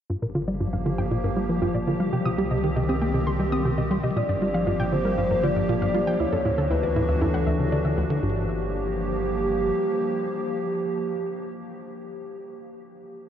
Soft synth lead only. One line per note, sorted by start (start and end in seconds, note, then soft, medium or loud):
4.16 4.94 D5 loud
4.93 5.18 C5 loud
5.18 5.45 C5 loud
5.43 5.68 D5 loud
5.69 6.21 D5 loud
6.20 6.72 C#5 loud
6.70 7.23 B4 medium
7.21 7.98 A4 medium
8.23 12.14 G4 medium